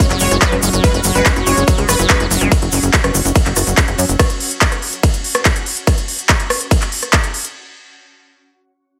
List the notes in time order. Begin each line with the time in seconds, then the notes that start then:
Already playing: F#3 C#4 F#4 F#5 C#6
0.10 F#1 F#3, clap, closed hi-hat
0.20 F#1 G#3 C#5, open hi-hat, shaker
0.31 F#1 G#3, cross-stick, closed hi-hat, shaker
0.42 F#3 B4, kick, clap, closed hi-hat, ride, shaker
0.52 F#2 G#3, closed hi-hat
0.63 F#1 G#3, open hi-hat, shaker
0.73 F#1 F#3, closed hi-hat, shaker
0.84 G#3 B4, kick, closed hi-hat, ride, shaker
0.94 F#1 G#3, closed hi-hat
1.04 F#1 F#3, open hi-hat, shaker
1.15 F#1 G#3 B4, closed hi-hat, shaker
1.26 G#3, kick, cross-stick, clap, closed hi-hat, ride, shaker
1.36 F#1 F#3, closed hi-hat
1.47 F#1 G#3 C#5, open hi-hat, shaker
1.57 F#1 G#3, closed hi-hat, shaker
1.68 F#3, kick, closed hi-hat, ride, shaker
1.78 C#2 G#3, closed hi-hat
1.89 F#1 G#3 B4, cross-stick, open hi-hat, shaker
1.99 F#1 F#3, closed hi-hat, shaker
2.09 G#3 B4, kick, clap, closed hi-hat, ride, shaker
2.20 F#1 G#3, closed hi-hat
2.31 F#1 F#3, open hi-hat, shaker
2.40 F#1 G#3, cross-stick, closed hi-hat, shaker
2.52 kick, closed hi-hat, ride, shaker
2.62 F#1, closed hi-hat
2.72 F#1, open hi-hat, shaker
2.83 F#1, closed hi-hat, shaker
2.94 kick, clap, closed hi-hat, ride, shaker
3.04 F#1, cross-stick, closed hi-hat
3.15 F#1, open hi-hat, shaker
3.25 F#1, closed hi-hat, shaker
3.35 kick, closed hi-hat, ride, shaker
3.46 F#1, clap, closed hi-hat
3.56 F#1, cross-stick, open hi-hat, shaker
3.67 F#1, closed hi-hat, shaker
3.77 kick, clap, closed hi-hat, ride, shaker
3.88 F#1, closed hi-hat
3.98 F#2, open hi-hat, shaker
4.09 F#1, closed hi-hat, shaker
4.19 kick, cross-stick, closed hi-hat, ride
4.30 closed hi-hat
4.40 open hi-hat
4.51 closed hi-hat
4.61 kick, clap, closed hi-hat, ride
4.72 cross-stick, closed hi-hat
4.82 open hi-hat
4.93 closed hi-hat
5.03 kick, closed hi-hat, ride
5.14 closed hi-hat
5.24 open hi-hat
5.35 cross-stick, closed hi-hat
5.45 kick, clap, closed hi-hat, ride
5.56 closed hi-hat
5.66 open hi-hat
5.77 closed hi-hat
5.87 kick, cross-stick, closed hi-hat, ride
5.98 closed hi-hat
6.08 open hi-hat
6.19 closed hi-hat
6.29 kick, clap, closed hi-hat, ride
6.40 closed hi-hat
6.50 cross-stick, open hi-hat
6.61 closed hi-hat
6.71 kick, closed hi-hat, ride
6.82 clap, closed hi-hat
6.92 open hi-hat
7.03 cross-stick, closed hi-hat
7.13 kick, clap, closed hi-hat, ride
7.24 closed hi-hat
7.34 open hi-hat
7.45 closed hi-hat